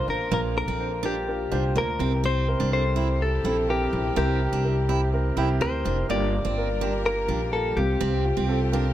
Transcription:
Already playing: A#2 A#3 D4 F4 G4 A4 A#4 C5
0.07 A1 D4 F4 A#4 C5
0.32 A#1 A#2 A#3 D4 F4 A#4
0.56 D4 F4 A4 A#4
0.68 A#1 C4
0.80 D4 F4 C5
1.03 D4 F4 G4 A#4
1.27 D4 F4 A#4
1.51 C2 D4 F4 C5
1.76 D2 A#3 D4 F4 A#4
1.99 C2 C3 C4 E4 G4
2.24 C4 C5
2.47 C4 E4 A#4
2.60 C2 D4
2.71 C4 E4 A4 C5
2.96 C4 E4 G4
3.20 C4 E4 G4 A4
3.44 A#1 C4 E4 A4
3.68 C4 E4 G4 A#4
3.93 A#1 C3 C4 E4 G4
4.16 C2 C4 E4 G4 A#4
4.40 C4 E4 G4
4.52 C2 D4
4.64 C4 E4 A#4
4.88 C4 E4 G4
5.13 C4 E4 A#4
5.37 C2 C4 E4 G4
5.60 D2 C4 E4 A#4 C5
5.84 F1 C4 D4 E4 A#4
6.09 G1 G2 G3 A#3 D4 F4 G4 A#4 D5
6.33 A#3 F4 G4
6.45 G1 C4
6.58 A#3 F4 A#4
6.81 A#3 D4 F4 G4
7.05 A#3 F4 A#4
7.28 A#1 A#3 D4 F4 G4
7.53 A#3 F4 A4 A#4
7.76 C2 C3 C4 F4 G4
8.01 C2 C4
8.24 C4 F4 G4
8.37 C2 C4
8.48 C4 F4 A4
8.72 C4 D4 F4 A#4

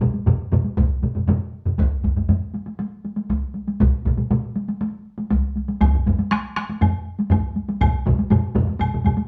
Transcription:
0.01 taiko low-mid, taiko mid, taiko high
0.14 taiko high
0.26 taiko low-mid, taiko mid, taiko high
0.52 taiko low-mid, taiko mid, taiko high
0.65 taiko high
0.77 taiko, taiko low-mid, taiko mid, taiko high
1.02 taiko low-mid, taiko mid, taiko high
1.15 taiko low-mid, taiko mid, taiko high
1.28 taiko low-mid, taiko mid, taiko high
1.65 taiko low-mid, taiko mid
1.78 taiko, taiko low-mid, taiko high
2.03 taiko, taiko low-mid, taiko high
2.16 taiko low-mid, taiko high
2.29 taiko low-mid, taiko high
2.54 taiko high
2.66 taiko high
2.79 taiko high
3.05 taiko high
3.17 taiko high
3.30 taiko, taiko high
3.55 taiko high
3.67 taiko high
3.80 taiko, taiko mid, taiko high
4.05 taiko, taiko mid, taiko high
4.17 taiko mid, taiko high
4.31 taiko mid, taiko high
4.56 taiko high
4.68 taiko high
4.81 taiko high
5.18 taiko high
5.31 taiko, taiko high
5.56 taiko high
5.68 taiko high
5.81 taiko, taiko low-mid, taiko high, high woodblock
5.94 taiko low-mid
6.06 taiko, taiko low-mid, taiko high
6.19 taiko high
6.31 taiko rim, taiko high, high woodblock
6.56 taiko rim, taiko high
6.69 taiko high
6.81 taiko low-mid, taiko high, high woodblock
7.19 taiko high
7.31 taiko, taiko low-mid, taiko high, high woodblock
7.56 taiko high
7.68 taiko high
7.81 taiko, taiko low-mid, taiko mid, taiko high, high woodblock
8.06 taiko, taiko low-mid, taiko mid, taiko high
8.19 taiko high
8.30 taiko low-mid, taiko mid, taiko high, high woodblock
8.55 taiko low-mid, taiko mid, taiko high
8.67 taiko high
8.79 taiko low-mid, taiko mid, taiko high, high woodblock
8.94 taiko low-mid, taiko mid
9.04 taiko low-mid, taiko mid, taiko high, high woodblock
9.17 taiko high

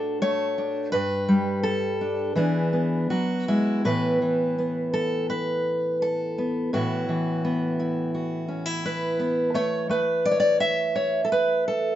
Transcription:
Already playing: A2 A3 D4 F#4 A4
0.22 A3 C#5
0.58 D4
0.92 G2 B4
1.28 G3
1.63 A4
2.01 D4
2.35 E3 B3 D4 G#4
2.73 B3
3.10 F#3 F#4
3.48 G#3 E4
3.85 A2 E3 B3 E4 B4
4.22 E3
4.58 B3
4.94 A4
5.30 B4
6.02 A4
6.38 B3
6.73 A2 E3 B3 E4 F#4
7.09 E3
7.45 B3
7.80 E4
8.14 F#4
8.48 C#4
8.66 E4
8.86 B4
9.19 B3
9.54 A3 C#5
9.89 A3 B4
10.26 D5
10.31 C#5
10.40 D5
10.60 E5
10.96 C#5
11.25 A4
11.32 B4
11.68 A4

